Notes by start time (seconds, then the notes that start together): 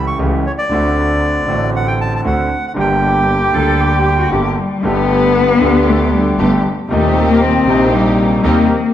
Already playing: C#2 C#3 E3 A3 C#4 G4
0.07 C#6
0.19 C#2 C#3 E3 A3 C#4 G4
0.47 C#5
0.58 D5
0.69 D2 D3 A3 C4 F#4
1.46 A1 A2 D3 A3 C4
1.50 F#4
1.76 F#5
1.87 G5
2.01 A5
2.16 A5
2.24 D2 D3 A3 C4 F#4 F#5
2.67 F#5
2.74 G1 G2 D3 G3 A#3 G4
2.80 G5
3.03 G4
3.52 D2 D3 G3 A#3 A4
3.57 G4
3.81 G4
4.18 F#4
4.31 G1 G2 D3 G3 A#3 G4
4.59 G3
4.83 G1 G2 D3 A3 B3 G4
4.87 G4
5.61 D2 D3 A3 B3 G4
5.89 A3
6.13 G3
6.38 G1 G2 D3 A3 B3 G4
6.88 D#2 A#2 C3 D#3 G3 A3 C4 D#4 G4
7.28 A#3
7.41 C4
7.66 A#1 A#2 C3 G3 A#3 C4 D#4 G4
7.70 D#4
7.93 G3
8.43 D#2 C3 D#3 G3 A#3 C4 D#4 G4